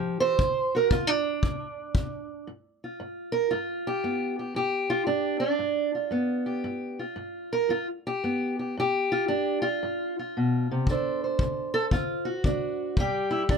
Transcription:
Already playing: steel-string acoustic guitar F3 F4 G4
0.20 steel-string acoustic guitar E3 C5
0.39 steel-string acoustic guitar D3, kick
0.75 steel-string acoustic guitar F#4 A#4
0.90 steel-string acoustic guitar D3 F4, kick
1.07 steel-string acoustic guitar D4
1.43 kick
1.95 kick
2.47 steel-string acoustic guitar G2
2.84 steel-string acoustic guitar F4
3.00 steel-string acoustic guitar G2
3.32 steel-string acoustic guitar A#4
3.51 steel-string acoustic guitar G2 F4
3.87 steel-string acoustic guitar G4
4.04 steel-string acoustic guitar G2 B3
4.39 steel-string acoustic guitar G4
4.54 steel-string acoustic guitar G2 G4
4.90 steel-string acoustic guitar F4
5.07 steel-string acoustic guitar G2 D4
5.40 steel-string acoustic guitar D4
5.59 steel-string acoustic guitar G2
5.95 steel-string acoustic guitar F4
6.11 steel-string acoustic guitar G2 B3
6.46 steel-string acoustic guitar G4
6.64 steel-string acoustic guitar G2
6.99 steel-string acoustic guitar F4
7.16 steel-string acoustic guitar G2
7.53 steel-string acoustic guitar A#4
7.69 steel-string acoustic guitar G2 F4
8.07 steel-string acoustic guitar G4
8.24 steel-string acoustic guitar G2 B3
8.59 steel-string acoustic guitar G4
8.77 steel-string acoustic guitar G2 G4
9.12 steel-string acoustic guitar F4
9.28 steel-string acoustic guitar G2 D4
9.62 steel-string acoustic guitar F4
9.83 steel-string acoustic guitar G2
10.19 steel-string acoustic guitar F4
10.37 steel-string acoustic guitar B2
10.71 steel-string acoustic guitar C3
10.87 steel-string acoustic guitar D3 D4 A4, kick
10.91 steel-string acoustic guitar C5
11.24 steel-string acoustic guitar C5
11.39 steel-string acoustic guitar D3, kick
11.74 steel-string acoustic guitar A4
11.91 steel-string acoustic guitar D3 F4, kick
12.25 steel-string acoustic guitar F#4
12.44 steel-string acoustic guitar D3 D4, kick
12.97 steel-string acoustic guitar C3 G3 G4, kick
13.31 steel-string acoustic guitar E4
13.49 steel-string acoustic guitar C3 D4, kick

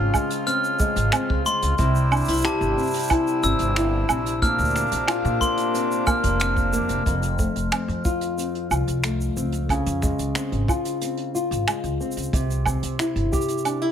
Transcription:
Already playing: accordion C#3 C4 F4, nylon-string guitar C#3 C4 F4
0.14 nylon-string guitar G#3, kick, low woodblock, shaker
0.30 closed hi-hat, shaker
0.47 nylon-string guitar C4, glockenspiel F6, closed hi-hat, shaker
0.64 shaker
0.79 nylon-string guitar G#3, kick, shaker
0.96 upright bass G#1, closed hi-hat, shaker
1.12 nylon-string guitar C4, finger snap, closed hi-hat, low woodblock, shaker
1.30 upright bass C#2, kick
1.46 nylon-string guitar G#3, glockenspiel C6, shaker
1.62 upright bass C#2, closed hi-hat, shaker
1.78 upright bass C2, nylon-string guitar C3, accordion C3 G3 E4, kick, closed hi-hat, shaker
1.95 shaker
2.11 nylon-string guitar D4, low woodblock, shaker
2.16 shaker
2.20 shaker
2.25 upright bass C2, nylon-string guitar E4, closed hi-hat, shaker
2.29 shaker
2.33 shaker
2.37 shaker
2.41 nylon-string guitar G4, glockenspiel A5, finger snap, closed hi-hat, shaker
2.61 upright bass G1, shaker
2.77 nylon-string guitar C4, shaker
2.83 shaker
2.87 shaker
2.91 closed hi-hat, shaker
2.94 closed hi-hat, shaker
2.99 closed hi-hat, shaker
3.02 closed hi-hat, shaker
3.05 closed hi-hat, shaker
3.07 nylon-string guitar E4, kick, closed hi-hat, low woodblock, shaker
3.11 closed hi-hat
3.27 shaker
3.43 upright bass G1, nylon-string guitar C4, glockenspiel E6, shaker
3.59 upright bass G1, closed hi-hat, shaker
3.76 nylon-string guitar E4, finger snap, closed hi-hat, shaker
4.09 upright bass A#1, nylon-string guitar C4, low woodblock, shaker
4.26 closed hi-hat, shaker
4.42 nylon-string guitar A#2, accordion A#3 D4, glockenspiel F6, kick, closed hi-hat, shaker
4.59 upright bass D2, shaker
4.64 shaker
4.70 shaker
4.75 nylon-string guitar C4, finger snap, shaker
4.86 shaker
4.91 upright bass A#1, closed hi-hat, shaker
5.08 nylon-string guitar F4, finger snap, closed hi-hat, low woodblock, shaker
5.25 upright bass A#2, shaker
5.41 nylon-string guitar A#3, glockenspiel C6, kick, shaker
5.57 closed hi-hat, shaker
5.74 nylon-string guitar C4, closed hi-hat, shaker
5.92 shaker
6.07 nylon-string guitar A#3, glockenspiel F6, kick, low woodblock, shaker
6.23 upright bass F1, kick, closed hi-hat, shaker
6.39 nylon-string guitar C4, glockenspiel F6, finger snap, closed hi-hat, shaker
6.57 kick, shaker
6.73 upright bass F2, nylon-string guitar A#3, shaker
6.89 upright bass F1, closed hi-hat, shaker
7.06 upright bass F1, nylon-string guitar F2, kick, closed hi-hat, shaker
7.23 closed hi-hat, shaker
7.39 nylon-string guitar A3, kick, shaker
7.55 upright bass F1, closed hi-hat, shaker
7.72 nylon-string guitar C4, finger snap, closed hi-hat, low woodblock, shaker
7.88 upright bass F2, closed hi-hat
8.05 nylon-string guitar F4, kick, shaker
8.21 closed hi-hat, shaker
8.38 nylon-string guitar C4, closed hi-hat, shaker
8.55 closed hi-hat
8.71 upright bass C2, nylon-string guitar F4, low woodblock, shaker
8.87 upright bass C2, closed hi-hat, shaker
9.04 nylon-string guitar A3, finger snap, closed hi-hat, shaker
9.21 shaker
9.36 upright bass C#2, nylon-string guitar C4, shaker
9.52 closed hi-hat, shaker
9.69 nylon-string guitar C#3, kick, closed hi-hat, low woodblock, shaker
9.86 upright bass F2, closed hi-hat, shaker
10.02 nylon-string guitar G#3, finger snap, kick, shaker
10.19 upright bass C#2, closed hi-hat, shaker
10.35 nylon-string guitar C4, finger snap, closed hi-hat, shaker
10.52 upright bass G#1, closed hi-hat
10.68 nylon-string guitar F4, kick, low woodblock, shaker
10.85 closed hi-hat, shaker
11.01 nylon-string guitar C4, closed hi-hat, shaker
11.17 closed hi-hat
11.35 nylon-string guitar F4, shaker
11.51 upright bass G#1, closed hi-hat, shaker
11.67 nylon-string guitar G#3, finger snap, closed hi-hat, low woodblock, shaker
11.83 upright bass C#2, closed hi-hat, shaker
12.00 nylon-string guitar C4, shaker
12.12 shaker
12.17 upright bass C#2, closed hi-hat, shaker
12.22 shaker
12.33 upright bass C2, nylon-string guitar C3, kick, closed hi-hat, shaker
12.50 closed hi-hat, shaker
12.66 nylon-string guitar C4, kick, low woodblock, shaker
12.83 upright bass C2, closed hi-hat, shaker
12.99 nylon-string guitar E4, finger snap, closed hi-hat, shaker
13.16 upright bass G1, closed hi-hat
13.32 nylon-string guitar G4, kick, shaker
13.41 shaker
13.48 closed hi-hat, shaker
13.58 shaker
13.65 nylon-string guitar D4, closed hi-hat, low woodblock, shaker
13.81 nylon-string guitar E4, closed hi-hat

